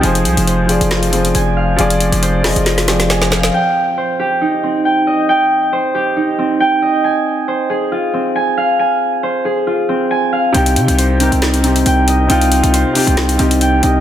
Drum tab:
HH |xxxxx-xxxxxxx---|xxxxx-oxxxxxx---|----------------|----------------|
SD |--------o-------|------o-oooooooo|----------------|----------------|

HH |----------------|----------------|xxxxx-xxxxxxx-x-|xxxxx-oxxxxxx-x-|
SD |----------------|----------------|--------o-------|--------o-------|